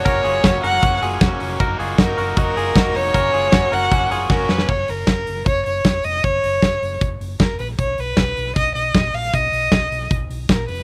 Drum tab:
CC |----------------|----------------|----------------|x---------------|
HH |x-o-x-o-x-o-x-o-|x-o-x-o-x-o-x-o-|x-o-x-o-x-o-----|--o-x-o-x-o-x-o-|
SD |----o-------o---|----o-------o---|----o-------o-oo|----o-------o---|
BD |o---o---o---o---|o---o---o---o---|o---o---o---o---|o---o---o---o---|

CC |----------------|----------------|----------------|
HH |x-o-x-o-x-o-x-o-|x-o-x-o-x-o-x-o-|x-o-x-o-x-o-x-o-|
SD |----o-------o---|----o-------o---|----o-------o---|
BD |o---o---o---o---|o---o---o---o---|o---o---o---o---|